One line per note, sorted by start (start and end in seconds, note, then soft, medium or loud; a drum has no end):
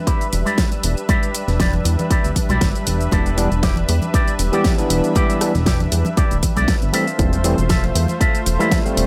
0.00 6.89 G3 medium
0.00 6.89 D4 medium
0.00 6.89 B4 medium
0.00 9.07 E5 medium
0.06 0.26 E4 medium
0.06 0.26 G4 medium
0.06 0.27 B4 medium
0.06 kick loud
0.06 closed hi-hat medium
0.06 shaker soft
0.21 closed hi-hat soft
0.21 shaker soft
0.33 0.44 E1 medium
0.33 open hi-hat loud
0.33 shaker medium
0.45 0.64 E4 medium
0.45 0.65 G4 medium
0.45 0.65 D5 loud
0.45 closed hi-hat soft
0.45 high conga medium
0.45 shaker soft
0.58 kick loud
0.58 snare loud
0.58 closed hi-hat medium
0.58 shaker soft
0.72 closed hi-hat soft
0.72 shaker soft
0.83 0.95 E1 loud
0.83 muted clean electric guitar stroke soft
0.83 open hi-hat loud
0.83 shaker medium
0.97 closed hi-hat soft
0.97 shaker soft
1.08 1.34 E4 loud
1.08 1.34 G4 medium
1.08 1.35 D5 loud
1.08 kick loud
1.08 closed hi-hat medium
1.08 high conga medium
1.08 shaker soft
1.23 closed hi-hat soft
1.23 shaker soft
1.35 open hi-hat loud
1.35 shaker medium
1.48 1.82 E1 medium
1.48 snare soft
1.48 closed hi-hat soft
1.48 shaker soft
1.59 1.73 E4 medium
1.59 1.73 G4 medium
1.59 1.74 D5 medium
1.59 kick loud
1.59 snare loud
1.59 closed hi-hat medium
1.59 shaker soft
1.73 closed hi-hat soft
1.73 low conga medium
1.84 1.96 E2 loud
1.84 muted clean electric guitar stroke soft
1.84 open hi-hat loud
1.84 high conga medium
1.84 shaker medium
1.99 closed hi-hat soft
1.99 low conga loud
1.99 shaker soft
2.10 2.30 E4 medium
2.10 2.30 G4 medium
2.10 2.31 D5 medium
2.10 kick loud
2.10 closed hi-hat medium
2.10 shaker soft
2.24 2.34 D1 medium
2.24 closed hi-hat soft
2.24 shaker soft
2.36 kick medium
2.36 open hi-hat loud
2.36 low conga medium
2.36 shaker medium
2.49 2.59 B1 medium
2.49 2.68 E4 medium
2.49 2.68 G4 medium
2.49 2.69 D5 medium
2.49 closed hi-hat soft
2.49 high conga loud
2.49 shaker soft
2.61 2.73 G1 medium
2.61 kick loud
2.61 snare loud
2.61 closed hi-hat medium
2.61 shaker soft
2.75 closed hi-hat soft
2.75 shaker soft
2.86 3.08 E1 medium
2.86 muted clean electric guitar stroke soft
2.86 open hi-hat loud
2.86 shaker medium
3.01 closed hi-hat soft
3.01 shaker soft
3.11 3.48 E1 loud
3.11 3.28 E3 medium
3.11 3.28 G3 medium
3.11 3.29 B3 medium
3.11 3.29 D4 medium
3.11 3.37 E4 medium
3.11 3.38 G4 loud
3.11 3.38 A4 loud
3.11 kick loud
3.11 closed hi-hat medium
3.11 high conga medium
3.11 shaker soft
3.26 closed hi-hat soft
3.26 shaker soft
3.37 3.48 E3 medium
3.37 3.48 G3 medium
3.37 3.48 B3 medium
3.37 3.48 D4 loud
3.37 open hi-hat loud
3.37 shaker medium
3.51 3.85 E1 medium
3.51 closed hi-hat soft
3.51 shaker soft
3.62 3.76 E4 medium
3.62 3.77 G4 medium
3.62 3.77 D5 medium
3.62 kick loud
3.62 snare loud
3.62 closed hi-hat medium
3.62 shaker soft
3.76 closed hi-hat soft
3.76 low conga medium
3.88 4.00 E2 medium
3.88 muted clean electric guitar stroke soft
3.88 open hi-hat loud
3.88 high conga medium
3.88 shaker medium
4.02 closed hi-hat soft
4.02 low conga medium
4.02 shaker soft
4.13 4.33 E4 medium
4.13 4.34 G4 medium
4.13 4.34 D5 loud
4.13 kick loud
4.13 closed hi-hat medium
4.13 shaker soft
4.28 closed hi-hat soft
4.28 shaker soft
4.39 4.51 E1 medium
4.39 open hi-hat loud
4.39 shaker medium
4.52 4.75 E3 medium
4.52 4.75 G3 medium
4.52 4.75 B3 medium
4.52 4.71 E4 medium
4.52 4.75 G4 loud
4.52 4.72 G4 medium
4.52 4.72 D5 medium
4.52 closed hi-hat soft
4.52 high conga medium
4.52 shaker soft
4.64 kick loud
4.64 snare loud
4.64 closed hi-hat medium
4.64 shaker soft
4.78 5.13 E3 medium
4.78 5.13 G3 medium
4.78 5.13 B3 medium
4.78 5.13 D4 medium
4.78 closed hi-hat soft
4.78 shaker soft
4.90 5.02 E1 medium
4.90 muted clean electric guitar stroke soft
4.90 open hi-hat loud
4.90 shaker medium
5.04 closed hi-hat soft
5.04 shaker soft
5.15 5.38 E3 medium
5.15 5.38 G3 medium
5.15 5.38 B3 medium
5.15 5.41 E4 loud
5.15 5.39 E4 medium
5.15 5.41 G4 loud
5.15 5.41 D5 loud
5.15 kick loud
5.15 closed hi-hat medium
5.15 high conga medium
5.15 shaker soft
5.30 closed hi-hat soft
5.30 shaker soft
5.41 5.51 E3 medium
5.41 5.52 G3 medium
5.41 5.52 B3 medium
5.41 5.52 D4 medium
5.41 cross-stick medium
5.41 open hi-hat loud
5.41 shaker medium
5.55 5.89 E1 medium
5.55 snare soft
5.55 closed hi-hat soft
5.55 shaker soft
5.66 5.80 E4 medium
5.66 5.80 G4 medium
5.66 5.81 D5 medium
5.66 kick loud
5.66 snare loud
5.66 closed hi-hat medium
5.66 shaker soft
5.79 closed hi-hat soft
5.79 low conga medium
5.92 6.03 E2 loud
5.92 muted clean electric guitar stroke soft
5.92 open hi-hat loud
5.92 high conga medium
5.92 shaker medium
6.05 closed hi-hat soft
6.05 low conga medium
6.05 shaker soft
6.16 6.36 E4 medium
6.16 6.37 G4 medium
6.16 6.37 D5 medium
6.16 kick loud
6.16 closed hi-hat medium
6.16 shaker soft
6.31 6.41 D1 medium
6.31 closed hi-hat soft
6.31 shaker soft
6.43 kick medium
6.43 open hi-hat loud
6.43 low conga medium
6.43 shaker medium
6.56 6.67 B1 medium
6.56 6.75 E4 medium
6.56 6.75 G4 medium
6.56 6.75 D5 loud
6.56 closed hi-hat soft
6.56 high conga medium
6.56 shaker soft
6.68 kick loud
6.68 snare loud
6.68 closed hi-hat medium
6.68 shaker soft
6.82 6.92 G1 medium
6.82 closed hi-hat soft
6.82 shaker soft
6.93 7.04 E3 medium
6.93 7.04 G3 medium
6.93 7.04 A3 medium
6.93 9.07 A3 medium
6.93 7.04 C4 medium
6.93 7.55 F4 medium
6.93 9.07 F4 medium
6.93 7.55 A4 medium
6.93 9.07 C5 medium
6.93 7.56 E5 medium
6.93 open hi-hat loud
6.93 shaker medium
7.07 closed hi-hat soft
7.07 shaker soft
7.18 7.55 E1 loud
7.18 7.35 E3 medium
7.18 7.35 G3 medium
7.18 7.35 A3 medium
7.18 7.36 C4 medium
7.18 kick loud
7.18 closed hi-hat medium
7.18 high conga medium
7.18 shaker soft
7.33 closed hi-hat soft
7.33 shaker soft
7.44 7.55 E3 medium
7.44 7.55 G3 medium
7.44 7.55 A3 medium
7.44 7.55 C4 loud
7.44 open hi-hat loud
7.44 shaker medium
7.58 7.92 E1 medium
7.58 closed hi-hat soft
7.58 shaker soft
7.69 7.83 F4 medium
7.69 7.83 A4 medium
7.69 7.84 E5 medium
7.69 kick loud
7.69 snare loud
7.69 closed hi-hat medium
7.69 shaker soft
7.84 closed hi-hat soft
7.84 low conga medium
7.94 8.07 E2 loud
7.94 muted clean electric guitar stroke soft
7.94 open hi-hat loud
7.94 high conga medium
7.94 shaker medium
8.08 closed hi-hat soft
8.08 low conga medium
8.08 shaker soft
8.20 8.40 F4 medium
8.20 8.40 A4 medium
8.20 8.40 E5 medium
8.20 kick loud
8.20 closed hi-hat medium
8.20 shaker soft
8.35 closed hi-hat soft
8.35 shaker soft
8.46 8.58 E1 medium
8.46 open hi-hat loud
8.46 shaker medium
8.59 8.82 E3 medium
8.59 8.82 G3 medium
8.59 8.82 A3 medium
8.59 8.82 E4 loud
8.59 8.78 F4 medium
8.59 8.78 A4 medium
8.59 8.79 E5 loud
8.59 closed hi-hat soft
8.59 high conga medium
8.59 shaker soft
8.71 kick loud
8.71 snare loud
8.71 closed hi-hat medium
8.71 shaker soft
8.85 9.07 G3 medium
8.85 9.07 A3 medium
8.85 9.07 C4 medium
8.85 closed hi-hat soft
8.85 shaker soft
8.96 9.07 E1 loud
8.96 muted clean electric guitar stroke soft
8.96 open hi-hat loud
8.96 shaker medium